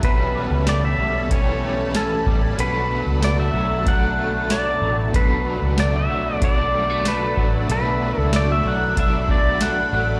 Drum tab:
HH |x-x-x-x-|x-x-x-x-|x-x-x-x-|x-x-x-x-|
TB |--x---x-|--x---x-|--x---x-|--x---x-|
SD |--o---o-|--o---o-|--o---o-|--o---o-|
BD |o---o--o|----o---|o---o--o|----oo--|